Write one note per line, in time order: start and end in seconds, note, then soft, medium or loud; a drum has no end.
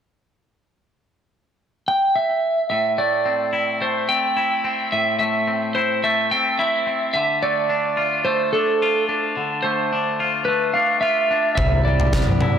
1.88 2.17 G5 medium
2.16 2.69 E5 medium
2.70 4.10 A2 soft
2.70 2.99 E5 medium
2.98 3.81 A3 soft
2.98 3.78 D5 medium
3.26 4.09 C4 soft
3.53 4.35 E4 soft
3.81 5.20 A3 soft
3.81 4.10 C5 medium
4.09 4.63 C4 soft
4.09 4.88 G5 medium
4.37 5.74 E4 soft
4.64 5.46 C4 soft
4.92 6.31 A2 soft
4.92 5.18 E5 medium
5.19 6.03 A3 soft
5.19 5.71 E5 medium
5.48 6.30 C4 soft
5.75 6.58 E4 soft
5.75 6.04 C5 medium
6.04 7.42 A3 soft
6.04 6.32 E5 medium
6.31 6.86 C4 soft
6.31 6.60 G5 medium
6.59 7.14 E4 soft
6.59 7.10 E5 medium
6.87 7.14 C4 soft
7.14 8.53 D3 soft
7.14 7.42 E5 medium
7.43 8.24 A3 soft
7.43 8.24 D5 medium
7.69 8.53 D4 soft
7.97 8.81 F4 soft
8.25 9.63 A3 soft
8.25 8.53 C5 medium
8.53 9.07 D4 soft
8.53 9.04 A4 medium
8.82 10.19 F4 soft
9.09 9.91 D4 soft
9.37 10.75 D3 soft
9.63 10.47 A3 soft
9.63 10.45 C5 medium
9.92 10.74 D4 soft
10.20 11.01 F4 soft
10.45 11.58 A3 soft
10.45 10.74 B4 medium
10.74 11.30 D4 soft
10.74 11.00 F5 medium
11.01 11.58 F4 medium
11.01 11.54 E5 medium
11.31 11.58 D4 soft
11.55 12.59 C2 medium
11.55 12.59 C3 soft
11.55 12.59 G3 soft
11.55 12.59 E4 soft
11.55 11.85 E5 medium
11.55 12.13 E5 medium
11.55 kick medium
11.55 floor tom medium
11.85 12.59 G3 soft
11.85 12.59 D5 medium
12.00 floor tom medium
12.13 12.59 B3 soft
12.13 12.59 D5 medium
12.13 kick medium
12.13 snare medium
12.27 mid tom soft
12.41 12.59 E4 soft
12.41 floor tom medium